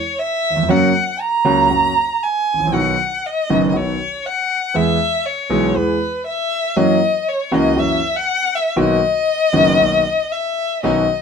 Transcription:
Already playing: C#5
0.19 E5
0.50 D#2
0.56 E2
0.63 F2
0.68 F#2 C#3 F#3 A#3 F#4 F#5
1.21 A#5
1.45 C#2 C#3 F#3 A#3 F#4
1.70 F#2 C#3 F#3 A#3 F#4
2.23 G#5
2.54 G#1
2.60 A1
2.67 A#1
2.72 B1 B2 D#3 F#3 B3 F#4 F#5
3.26 D#5
3.49 F#1 F#2 D#3 F#3 B3 F#4
3.69 D#5
3.73 B1 B2 D#3 F#3 B3 F#4 C#5
4.26 F#5
4.74 E2 E3 G#3 B3 G#4 E5
5.26 C#5
5.49 B1 B2 E3 G#3 B3 G#4
5.74 E2 E3 G#3 B3 G#4 B4
6.27 E5
6.76 F#2 E3 F#3 A#3 C#4 F#4 D#5
7.28 C#5
7.51 C#2 C#3 E3 A#3 C#4 F#4 D#5
7.76 F#2 E3 F#3 A#3 C#4 F#4 E5
8.15 F#5
8.55 E5
8.76 B1 B2 D#3 A#3 B3 F#4 D#5
9.53 F#1 F#2 D#3 A#3 B3 F#4
9.79 B1 B2 D#3 A#3 B3 F#4
10.32 E5
10.83 B1 B2 D#3 B3 C#4 D#4 F#4 D#5

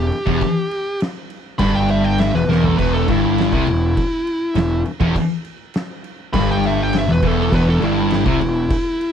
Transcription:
Already playing: G4
0.12 crash
0.27 E1 E2, kick
0.41 kick, crash
0.71 crash
1.00 snare, crash
1.30 crash
1.59 G1 G2 B5, kick, crash
1.75 G5
1.89 E5, crash
2.04 G5
2.18 E5, snare, crash
2.34 E1 E2 B4
2.47 E1 E2 A#4, snare
2.64 A4, floor tom
2.78 E1 E2 B4, kick, crash
2.94 A4
3.08 G1 G2 E4, kick, crash
3.38 snare, crash
3.52 C2 C3, kick
3.66 E1 E2, crash
3.97 kick, crash
4.27 crash
4.55 E1 E2, snare, crash
4.85 crash
5.00 E1 E2, kick
5.16 kick, crash
5.45 crash
5.74 snare, crash
6.04 crash
6.33 G1 G2 B5, kick, crash
6.51 G5
6.64 E5, crash
6.83 G5
6.93 snare, crash
6.99 E5
7.07 E1 E2
7.12 B4
7.23 E1 E2, kick, crash
7.27 A4
7.41 A4
7.51 E1 E2 B4, kick, crash
7.70 A4
7.80 G1 G2 E4, crash
8.11 snare, crash
8.24 C2 C3, kick
8.40 E1 E2, crash
8.70 kick, crash
9.01 crash

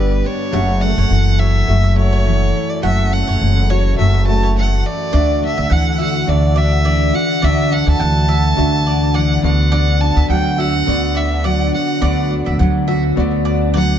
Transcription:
Already playing: G1 G2 G3 B3 D4 G4 B4 D5
0.24 D4 C#5
0.52 F#1 F#2 A3 F#4 E5 F#5
0.81 A3 F#5
0.98 F#1 C#5
1.10 F#1 E3
1.39 F#4 C#5 E5
1.68 F#1 F#2 A3 F#4 E5
1.83 E5
1.96 A3 F#4 C#5 E5
2.13 C#5
2.26 E3
2.55 C#4
2.70 D5
2.82 F#1 F#2 A3 F#4 E5 F#5
3.11 A3 F#5
3.27 F#1 C#5
3.41 F#1 E3
3.70 F#4 C#5
3.98 F#1 F#2 A3 F#4 E5
4.14 E5
4.26 A3 F#4 E5 A5
4.43 C#5
4.57 E3 F#5
4.86 D5
5.12 D2 D3 D4 F#4 D5 E5
5.42 D4 E5
5.58 D2 E5
5.70 D2 E3 F#5
5.98 F#4 E5
6.02 F#5
6.27 D2 D3 D4 F#4 D5 E5
6.56 D4 D5 E5
6.85 E3 D5
7.13 F#4 F#5
7.42 D2 D3 D4 F#4 D5 E5
7.71 D4 F#5
7.87 D2 E5 A5
7.99 D2 E3 F#5
8.28 F#4 E5
8.55 D2 D3 D4 F#4 E5
8.86 D4 D5
9.14 E3 D5 F#5
9.43 D2 D3 B3 F#4 D5 F#5
9.72 D3 D5
10.01 D4 A5
10.16 D2 E5
10.29 D2 F#3 F#5 G5
10.58 F#4 E5 F#5
10.86 D2 D3 B3 F#4 D5
11.15 D4 D5 E5
11.44 F#3 D5 F#5
11.73 F#4 F#5
12.01 D2 D3 B3 F#4 D5
12.31 D4
12.46 D2 E5
12.59 D2 F#3 F#5
12.88 F#4 E5
13.16 D2 D3 B3 F#4 D5
13.45 D4 D5
13.74 F#3 D5 F#5

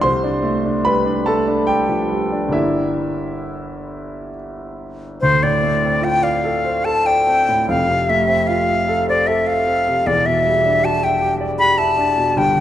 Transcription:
0.01 C2 C5 C6
0.23 D4
0.43 A3
0.65 D4
0.85 G3 B4 B5
1.05 D4
1.26 A3 A4 A5
1.47 D4
1.67 G3 G4 G5
1.89 F3
2.10 G3
2.32 D4
2.48 G1 G3 A#3 D4 E5
2.54 E4
5.21 D2 C5
5.43 A2 D5
5.63 A3
5.82 C4
6.02 F4 G5
6.23 D5 F5
6.44 A4
6.64 C5
6.85 A4 A5
7.06 D5 G5
7.27 C4
7.49 A2
7.68 F1 F2 F5
7.89 C3
8.09 A3 E5
8.28 C4
8.47 F4 F5
8.69 E5
8.88 A4
9.08 C5 D5
9.27 A4 E5
9.47 E5 F5
9.67 C4
9.88 C3
10.06 E1 E2 D5
10.26 B2 E5
10.46 G3
10.65 D4
10.84 F#4 A5
11.03 E5 G5
11.21 G4
11.41 D5
11.59 G4 B5
11.78 E5 A5
11.98 D4
12.17 B2
12.36 G1 G2 G5
12.56 D3

